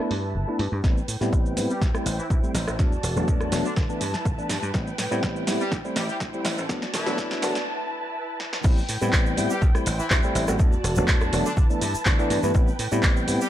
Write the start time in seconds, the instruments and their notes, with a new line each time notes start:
Already playing: string section E4 B4 A5
0.00 tine electric piano A3 B3 D4 E4
0.10 slap bass G2, open hi-hat
0.35 slap bass G1
0.48 tine electric piano A3 B3 D4 E4
0.59 slap bass G2, open hi-hat
0.72 slap bass G2
0.83 slap bass A1, tine electric piano G3 B3 C4 E4, string section B4 G5, kick, snare, shaker
0.97 shaker
1.08 slap bass A2, open hi-hat, shaker
1.21 slap bass A2, tine electric piano G3 B3 C4 E4, snare, shaker
1.33 slap bass A1, kick, shaker
1.46 shaker
1.57 slap bass A2, tine electric piano G3 B3 C4 E4, snare, open hi-hat, shaker
1.70 horn section G3 G4, shaker
1.81 slap bass D2, string section E4 C5, kick, snare, shaker
1.94 tine electric piano G3 A3 C4 E4, cross-stick, shaker
2.06 slap bass A1, open hi-hat, shaker
2.19 horn section E3 E4, muted slap bass stroke, shaker
2.30 slap bass D2, horn section E3 E4, kick, shaker
2.43 tine electric piano G3 A3 C4 E4, shaker
2.54 slap bass A1, snare, open hi-hat, shaker
2.67 slap bass A1, cross-stick, shaker
2.79 slap bass E2, tine electric piano F#3 A3 B3 D4, string section F#4 D5 A5, kick, snare, shaker
2.92 shaker
3.03 slap bass E1, open hi-hat, shaker
3.16 slap bass E1, tine electric piano F#3 A3 B3 D4, shaker
3.28 kick, shaker
3.41 cross-stick, shaker
3.52 slap bass E1, tine electric piano F#3 A3 B3 D4, snare, open hi-hat, shaker
3.65 horn section D3 D4, shaker
3.76 slap bass G1, horn section D3 D4, string section E4 B4 A5, kick, snare, shaker
3.89 tine electric piano E3 A3 B3 D4, shaker
4.01 slap bass G2, open hi-hat, shaker
4.14 muted slap bass stroke, snare, shaker
4.25 slap bass G1, kick, shaker
4.38 tine electric piano E3 A3 B3 D4, shaker
4.49 slap bass G2, snare, open hi-hat, shaker
4.62 slap bass G2, shaker
4.74 slap bass A1, tine electric piano G3 B3 C4 E4, string section G5, kick, snare, shaker
4.87 shaker
4.98 slap bass A2, snare, open hi-hat, shaker
5.11 slap bass A2, tine electric piano G3 B3 C4 E4, shaker
5.23 slap bass A1, kick, snare, shaker
5.36 shaker
5.47 slap bass A2, tine electric piano G3 B3 C4 E4, snare, open hi-hat, shaker
5.60 horn section G3 G4, shaker
5.72 slap bass D2, string section E4 C5 G5, kick, snare, shaker
5.84 tine electric piano G3 A3 C4 E4, shaker
5.96 slap bass A1, horn section G3 G4, snare, open hi-hat, shaker
6.09 horn section G3 G4, muted slap bass stroke, shaker
6.20 slap bass D2, kick, snare, shaker
6.33 tine electric piano G3 A3 C4 E4, shaker
6.45 slap bass A1, snare, open hi-hat, shaker
6.58 slap bass A1, shaker
6.69 slap bass E2, tine electric piano F#3 A3 B3 D4, string section F#4 D5 A5, kick, snare, shaker
6.82 snare, shaker
6.94 slap bass E1, horn section E3 E4, snare, open hi-hat, shaker
7.06 slap bass E1, tine electric piano F#3 A3 B3 D4, snare, shaker
7.18 kick, snare, shaker
7.31 snare, shaker
7.42 slap bass E1, tine electric piano F#3 A3 B3 D4, snare, open hi-hat, shaker
7.55 snare, shaker
7.67 string section E4 B4
8.40 snare
8.53 snare
8.64 slap bass A1, tine electric piano G3 B3 C4 E4, string section B4 G5, kick, crash, shaker
8.77 shaker
8.89 slap bass A2, open hi-hat, shaker
9.01 slap bass A2, tine electric piano G3 B3 C4 E4, shaker
9.13 slap bass A1, kick, clap, shaker
9.26 shaker
9.37 slap bass A2, tine electric piano G3 B3 C4 E4, open hi-hat, shaker
9.50 horn section G3 G4, shaker
9.62 slap bass D2, string section E4 C5, kick, shaker
9.74 tine electric piano G3 A3 C4 E4, cross-stick, shaker
9.86 slap bass A1, open hi-hat, shaker
9.99 horn section E3 E4, muted slap bass stroke, shaker
10.10 slap bass D2, horn section E3 E4, tine electric piano G3 A3 C4 E4, kick, clap, shaker
10.23 tine electric piano G3 A3 C4, shaker
10.24 tine electric piano E4, shaker
10.35 slap bass A1, open hi-hat, shaker
10.48 slap bass A1, tine electric piano G3 A3 C4 F#4, cross-stick, shaker
10.59 tine electric piano A3, string section F#4 D5 A5, kick, shaker
10.72 shaker
10.84 slap bass E1, cross-stick, open hi-hat, shaker
10.96 slap bass E1, tine electric piano F#3 A3 B3, shaker
10.97 tine electric piano D4, shaker
11.08 kick, clap, shaker
11.21 cross-stick, shaker
11.33 slap bass E1, tine electric piano F#3 A3 B3 D4, open hi-hat, shaker
11.46 horn section D3 D4, shaker
11.57 slap bass G1, horn section D3 D4, string section E4 B4, kick, shaker
11.70 tine electric piano E3 A3 B3 D4, shaker
11.81 slap bass G2, open hi-hat, shaker
11.94 muted slap bass stroke, shaker
12.05 slap bass G1, tine electric piano E3 A3 B3 D4, kick, clap, shaker
12.19 tine electric piano E3 A3 B3 D4, shaker
12.30 slap bass G2, open hi-hat, shaker
12.43 slap bass G2, tine electric piano E3 A3 B3 E4, shaker
12.54 slap bass A1, tine electric piano B3 C4 E4, string section G5, kick, shaker
12.67 shaker
12.79 slap bass A2, open hi-hat, shaker
12.92 slap bass A2, tine electric piano G3 B3 C4 E4, shaker
13.03 slap bass A1, kick, clap, shaker
13.16 shaker
13.27 slap bass A2, tine electric piano G3 B3 C4 E4, open hi-hat, shaker
13.41 horn section G3 G4, shaker